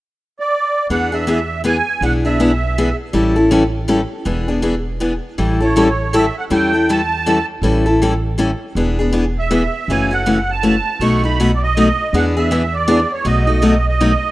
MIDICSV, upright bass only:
0, 0, Header, 1, 2, 480
1, 0, Start_track
1, 0, Tempo, 374298
1, 1154, Time_signature, 3, 2, 24, 8
1, 18358, End_track
2, 0, Start_track
2, 0, Title_t, "Upright bass"
2, 0, Program_c, 0, 32
2, 1151, Note_on_c, 0, 40, 73
2, 2302, Note_off_c, 0, 40, 0
2, 2578, Note_on_c, 0, 35, 84
2, 3733, Note_off_c, 0, 35, 0
2, 4023, Note_on_c, 0, 33, 80
2, 5176, Note_off_c, 0, 33, 0
2, 5459, Note_on_c, 0, 28, 88
2, 6614, Note_off_c, 0, 28, 0
2, 6904, Note_on_c, 0, 33, 80
2, 8058, Note_off_c, 0, 33, 0
2, 8341, Note_on_c, 0, 40, 73
2, 9497, Note_off_c, 0, 40, 0
2, 9769, Note_on_c, 0, 33, 85
2, 10931, Note_off_c, 0, 33, 0
2, 11225, Note_on_c, 0, 28, 82
2, 12382, Note_off_c, 0, 28, 0
2, 12671, Note_on_c, 0, 30, 83
2, 13826, Note_off_c, 0, 30, 0
2, 14100, Note_on_c, 0, 35, 80
2, 15259, Note_off_c, 0, 35, 0
2, 15555, Note_on_c, 0, 40, 85
2, 16706, Note_off_c, 0, 40, 0
2, 16991, Note_on_c, 0, 35, 84
2, 18142, Note_off_c, 0, 35, 0
2, 18358, End_track
0, 0, End_of_file